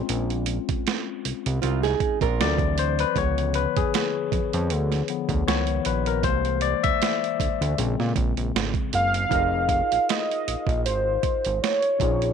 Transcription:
Already playing: tine electric piano G#3 C4 C#4 F4
0.09 analog synth bass A#1, closed hi-hat
0.30 closed hi-hat
0.46 closed hi-hat
0.69 analog synth bass C2, kick, closed hi-hat
0.87 snare, closed hi-hat
1.25 analog synth bass C2, closed hi-hat
1.46 analog synth bass C2, closed hi-hat
1.62 analog synth bass C2, nylon-string guitar C4 F4, closed hi-hat
1.83 nylon-string guitar D#4 G#4, snare, closed hi-hat
2.00 kick, closed hi-hat
2.21 analog synth bass A#1, nylon-string guitar F4 A#4, kick, closed hi-hat
2.40 analog synth bass D2, tine electric piano E3 F#3 C4 D5, snare, closed hi-hat
2.58 kick, closed hi-hat
2.78 tine electric piano C5, closed hi-hat
2.99 tine electric piano B4, closed hi-hat
3.16 analog synth bass C#2, tine electric piano D3 F3 B3 C#5, kick, closed hi-hat
3.38 closed hi-hat
3.54 tine electric piano B4, closed hi-hat
3.77 analog synth bass F2, tine electric piano G#4, kick, closed hi-hat
3.94 snare, closed hi-hat
4.32 analog synth bass F2, kick, closed hi-hat
4.53 analog synth bass F2, closed hi-hat
4.70 analog synth bass D2, closed hi-hat
4.92 snare, closed hi-hat
5.08 tine electric piano D3 F3 B3, closed hi-hat
5.29 analog synth bass D2, kick, closed hi-hat
5.47 analog synth bass C#2, tine electric piano D#3 F3 B3 C#5, snare, closed hi-hat
5.67 closed hi-hat
5.85 analog synth bass A#1, tine electric piano B4, closed hi-hat
6.06 tine electric piano A#4, closed hi-hat
6.23 analog synth bass C2, tine electric piano E3 G#3 A#3 C5, kick, closed hi-hat
6.45 closed hi-hat
6.61 tine electric piano D5, closed hi-hat
6.83 analog synth bass D2, tine electric piano E5, kick, closed hi-hat
7.02 snare, closed hi-hat
7.24 closed hi-hat
7.40 analog synth bass D2, kick, closed hi-hat
7.61 analog synth bass D2, closed hi-hat
7.78 analog synth bass A#1, tine electric piano C#3 G#3 C4, closed hi-hat
7.99 analog synth bass A#2, snare
8.16 analog synth bass A#1, kick, closed hi-hat
8.37 analog synth bass A#1, closed hi-hat
8.55 analog synth bass G#1, snare, closed hi-hat
8.74 kick, closed hi-hat
8.93 analog synth bass F#1, soft synth lead F5, closed hi-hat
9.14 closed hi-hat
9.29 analog synth bass F1, tine electric piano D#4 F4 F#4, kick, closed hi-hat
9.34 tine electric piano A#4 D#5
9.39 tine electric piano G#4
9.69 kick, closed hi-hat
9.92 analog synth bass A#1, closed hi-hat
10.09 soft synth lead D#5, snare, closed hi-hat
10.31 closed hi-hat
10.48 analog synth bass A#1, closed hi-hat
10.67 analog synth bass A#1, kick, closed hi-hat
10.86 analog synth bass G#1, soft synth lead C5, closed hi-hat
11.23 kick, closed hi-hat
11.45 analog synth bass G#1, closed hi-hat
11.63 soft synth lead C#5, snare, closed hi-hat
11.83 closed hi-hat
11.99 analog synth bass A#1, tine electric piano C4 D#4 F4, kick, closed hi-hat
12.03 tine electric piano C#4 G#4 C#5
12.22 closed hi-hat

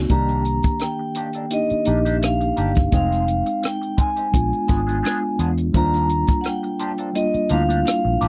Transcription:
Already playing: tine electric piano A#3 C4 D#4 F#4
0.09 fingered electric bass C2, clean electric guitar D#3 A#3 D4 G4, tine electric piano D#3 A#3 D4 G4, vibraphone A#5, kick, closed hi-hat
0.29 closed hi-hat
0.45 closed hi-hat
0.63 muted clean electric guitar stroke, kick, closed hi-hat
0.80 vibraphone G5, muted clean electric guitar stroke, cross-stick, closed hi-hat
0.99 muted clean electric guitar stroke
1.15 clean electric guitar D#3 A#3 D4 G4, closed hi-hat
1.33 clean electric guitar D#3 A#3 D4 A4, closed hi-hat
1.50 tine electric piano A#3 D4 D#4 G4, vibraphone D#5, muted clean electric guitar stroke, closed hi-hat
1.70 muted clean electric guitar stroke, muted fingered electric bass stroke, closed hi-hat
1.85 fingered electric bass A#1, clean electric guitar D#3 A#3 D4 G4, tine electric piano A#3 D4 D#4 G4, closed hi-hat
2.05 clean electric guitar D#3 A#3 D4 G4, closed hi-hat
2.17 vibraphone E5
2.22 vibraphone F5, muted clean electric guitar stroke, cross-stick, closed hi-hat
2.41 muted clean electric guitar stroke, closed hi-hat
2.57 fingered electric bass G1, clean electric guitar D#3 A#3 D4 G4, closed hi-hat
2.75 kick, closed hi-hat
2.91 fingered electric bass F1, clean electric guitar D#3 G#3 C4 G#4, tine electric piano G#3 C4 D#4 G5, kick, closed hi-hat
2.96 vibraphone F5
3.12 cross-stick, closed hi-hat
3.28 closed hi-hat
3.46 muted clean electric guitar stroke, closed hi-hat
3.63 vibraphone G5, muted clean electric guitar stroke, cross-stick, closed hi-hat
3.82 muted clean electric guitar stroke, closed hi-hat
3.97 clean electric guitar D#3 G#3 C4 G#4, vibraphone G#5, kick, closed hi-hat
4.16 clean electric guitar D#3 G#3 C4 G4, closed hi-hat
4.32 fingered electric bass A#1, tine electric piano G#3 B3 D4 F4, muted clean electric guitar stroke, kick, closed hi-hat
4.52 muted clean electric guitar stroke, muted fingered electric bass stroke, closed hi-hat
4.67 fingered electric bass G#1, clean electric guitar F3 B3 D4 G#4, tine electric piano G#3 B3 D4 F4, kick, closed hi-hat
4.87 clean electric guitar F3 B3 D4 G#4, closed hi-hat
5.03 clean electric guitar F3 B3 D4 G#4, cross-stick, closed hi-hat
5.23 muted clean electric guitar stroke
5.39 fingered electric bass E2, clean electric guitar F3 B3 D4 G#4, closed hi-hat
5.58 muted clean electric guitar stroke, closed hi-hat
5.73 fingered electric bass D#2, clean electric guitar F3 A#3 D4 G4, tine electric piano G3 A#3 D4 F4, vibraphone A#5, kick, closed hi-hat
5.94 cross-stick, closed hi-hat
6.09 celesta A#5, closed hi-hat
6.27 muted clean electric guitar stroke, kick, closed hi-hat
6.41 vibraphone F#5, muted clean electric guitar stroke, closed hi-hat
6.46 vibraphone G5, cross-stick
6.63 muted clean electric guitar stroke, closed hi-hat
6.79 clean electric guitar F3 A#3 D4 G4, closed hi-hat
6.98 clean electric guitar F3 A#3 D4 A4, closed hi-hat
7.13 tine electric piano G3 A#3 D4 F4, vibraphone D#5, muted clean electric guitar stroke, closed hi-hat
7.34 muted clean electric guitar stroke, muted fingered electric bass stroke, closed hi-hat
7.49 fingered electric bass D2, clean electric guitar F3 A#3 D4 G4, tine electric piano G3 A#3 D4 E4, vibraphone F5, closed hi-hat
7.59 tine electric piano F4
7.69 clean electric guitar F3 A#3 D4 G4, closed hi-hat
7.85 vibraphone F5, muted clean electric guitar stroke, cross-stick, closed hi-hat
8.05 fingered electric bass A#1, muted clean electric guitar stroke
8.21 fingered electric bass A1, clean electric guitar F3 A#3 D4 G4, celesta D6, closed hi-hat

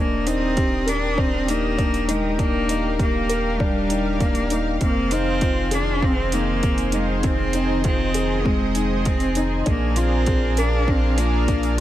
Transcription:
Already playing: sub bass D#1, cello A#3, felt piano D4, analog synth pad G4 A#4 D#6
0.27 cello C4, felt piano D#4, closed hi-hat
0.57 felt piano G4, kick, closed hi-hat
0.86 cello D4, felt piano A#4, closed hi-hat
1.18 cello C4, felt piano D4, kick
1.48 cello A#3, felt piano D#4, closed hi-hat
1.78 felt piano D4, kick, closed hi-hat
1.94 closed hi-hat
2.08 cello G#3, felt piano D#4, closed hi-hat
2.39 cello A#3, felt piano D4, analog synth pad F5, kick, closed hi-hat
2.69 felt piano D#4, closed hi-hat
2.99 cello A#3, felt piano G4, kick, closed hi-hat
3.29 felt piano A#4, closed hi-hat
3.60 cello G3, felt piano D4, kick
3.90 felt piano D#4, closed hi-hat
4.20 cello A#3, felt piano D4, kick, closed hi-hat
4.35 closed hi-hat
4.50 felt piano D#4, closed hi-hat
4.81 sub bass F1, analog synth pad D#3 G#4 C5, cello A#3, felt piano C4, kick, closed hi-hat
5.11 cello C4, felt piano D#4, closed hi-hat
5.41 felt piano F4, kick, closed hi-hat
5.71 cello D4, felt piano G#4, closed hi-hat
6.02 felt piano C4, cello C4, kick
6.32 cello A#3, felt piano D#4, closed hi-hat
6.63 felt piano C4, kick, closed hi-hat
6.78 closed hi-hat
6.92 cello G#3, felt piano D#4, closed hi-hat
7.23 felt piano C4, cello C4, analog synth pad D#5, kick, closed hi-hat
7.53 felt piano D#4, closed hi-hat
7.84 cello C4, felt piano F4, kick, closed hi-hat
8.14 felt piano G#4, closed hi-hat
8.45 cello G#3, felt piano C4, kick
8.75 felt piano D#4, closed hi-hat
9.05 felt piano C4, cello C4, kick, closed hi-hat
9.20 closed hi-hat
9.35 felt piano D#4, closed hi-hat
9.66 sub bass A#1, cello A#3, felt piano D4, analog synth pad D4 A#4 F5, kick, closed hi-hat
9.96 cello C4, felt piano F4, closed hi-hat
10.26 felt piano G#4, kick, closed hi-hat
10.57 cello D4, felt piano A#4, closed hi-hat
10.88 cello C4, felt piano D4, kick
11.18 cello A#3, felt piano F4, closed hi-hat
11.48 felt piano D4, kick, closed hi-hat
11.63 closed hi-hat

